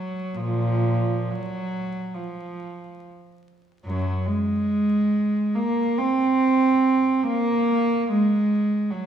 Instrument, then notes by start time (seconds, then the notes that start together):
cello
Already playing: F#3
0.37 A#2 F3
1.30 F#3
2.14 F3
3.85 F#2 F#3
4.27 G#3
5.55 A#3
5.98 C4
7.27 A#3
8.11 G#3
8.91 F#3